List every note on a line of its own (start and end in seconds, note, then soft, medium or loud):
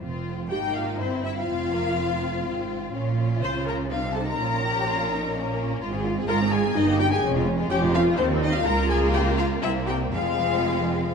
0.00 0.47 F1 medium
0.00 0.46 F2 medium
0.00 0.47 C4 medium
0.00 0.47 F4 medium
0.49 0.99 G#1 medium
0.49 0.99 G#2 medium
0.49 1.00 A#3 medium
0.49 0.99 D#4 medium
0.49 0.58 G4 medium
0.49 0.73 G5 loud
0.75 0.99 F4 medium
0.75 0.99 F5 medium
0.98 1.49 G1 medium
0.98 1.48 G2 medium
0.98 1.46 C4 medium
0.98 1.24 C4 medium
0.98 1.49 E4 medium
0.98 1.23 C5 loud
1.24 1.36 E4 medium
1.24 1.37 E5 medium
1.36 2.90 F4 medium
1.36 2.91 F5 loud
1.47 2.44 F1 medium
1.47 2.44 F2 medium
1.47 1.72 C4 medium
1.47 2.90 F4 medium
1.72 1.97 A#3 medium
1.97 2.44 C4 medium
2.45 2.94 G#1 medium
2.45 2.94 G#2 medium
2.45 2.93 C4 medium
2.92 3.42 A#1 medium
2.92 3.41 A#2 medium
2.92 3.16 C#4 medium
2.92 3.88 F4 medium
3.17 3.89 C#4 medium
3.42 3.91 C#2 medium
3.42 3.91 C#3 medium
3.42 3.65 C5 medium
3.42 3.51 C6 loud
3.67 3.75 A#4 medium
3.67 3.76 A#5 medium
3.90 4.39 C2 medium
3.90 4.39 C3 medium
3.90 4.39 C4 medium
3.90 4.38 D#4 medium
3.90 3.99 F4 medium
3.90 4.14 F5 loud
4.14 4.20 A4 medium
4.14 4.26 A5 loud
4.26 5.78 A#4 loud
4.26 5.79 A#5 loud
4.38 5.78 A#1 medium
4.38 5.78 A#2 medium
4.38 5.34 C#4 medium
4.38 4.63 F4 medium
4.63 4.87 G4 medium
4.88 5.11 F4 medium
5.11 5.35 D#4 medium
5.35 5.82 A#3 medium
5.35 5.82 C#4 medium
5.81 6.23 G#1 loud
5.81 6.23 G#2 loud
5.81 5.92 F4 medium
5.93 6.05 C4 medium
5.93 6.05 G#4 medium
6.05 6.17 F4 medium
6.17 6.29 C4 medium
6.17 6.29 G#4 medium
6.28 6.70 G#1 loud
6.28 6.70 G#2 loud
6.28 6.39 F4 medium
6.28 6.36 A#4 loud
6.28 6.50 A#5 loud
6.41 6.52 C4 medium
6.41 6.53 G#4 medium
6.52 6.64 F4 medium
6.52 6.76 G#4 medium
6.52 6.76 G#5 loud
6.65 6.76 C4 medium
6.65 6.76 G#4 medium
6.75 7.18 G1 loud
6.75 7.18 G2 loud
6.75 7.00 D#4 loud
6.75 6.88 D#4 medium
6.75 6.99 D#5 loud
6.88 7.00 A#3 medium
6.88 7.00 G4 medium
6.99 7.12 D#4 medium
6.99 7.11 G4 loud
6.99 7.11 G5 loud
7.11 7.23 A#3 medium
7.11 7.23 G4 medium
7.11 7.23 G#4 loud
7.11 7.23 G#5 loud
7.23 7.65 F1 loud
7.23 7.65 F2 loud
7.23 7.34 C#4 medium
7.35 7.47 G#3 medium
7.35 7.47 F4 medium
7.46 7.59 C#4 medium
7.58 7.70 G#3 medium
7.58 7.70 F4 medium
7.70 8.13 F1 loud
7.70 8.13 F2 loud
7.70 7.82 C#4 medium
7.70 7.93 G4 loud
7.70 7.78 G5 loud
7.83 7.95 G#3 medium
7.83 7.95 F4 medium
7.94 8.07 C#4 medium
7.94 8.18 F4 loud
7.94 8.02 F5 loud
8.07 8.19 G#3 medium
8.07 8.19 F4 medium
8.17 8.61 D#2 loud
8.17 8.42 C4 loud
8.17 8.30 C4 medium
8.17 8.25 C5 loud
8.32 8.43 G3 medium
8.32 8.43 D#4 medium
8.41 8.55 C4 medium
8.41 8.54 D#4 loud
8.41 8.54 D#5 loud
8.53 8.67 G3 medium
8.53 8.67 D#4 medium
8.53 8.66 F4 loud
8.53 8.66 F5 loud
8.65 9.59 C#2 loud
8.65 9.60 A#3 loud
8.65 9.60 F4 loud
8.65 8.90 A#4 loud
8.65 8.90 A#5 loud
8.89 9.13 G#4 loud
8.89 8.97 G#5 loud
9.13 9.37 G4 loud
9.13 9.22 G5 loud
9.37 9.45 F4 loud
9.37 9.46 F5 loud
9.62 10.12 C2 medium
9.62 10.13 C2 loud
9.62 10.12 A#3 medium
9.62 10.12 C4 medium
9.62 9.70 E4 loud
9.62 9.70 E5 loud
9.86 9.94 G4 loud
9.86 9.96 G5 loud
10.12 11.14 F1 medium
10.12 11.14 F2 loud
10.12 11.14 G#3 loud
10.12 11.14 C4 medium
10.12 11.13 F4 loud
10.12 11.14 F5 loud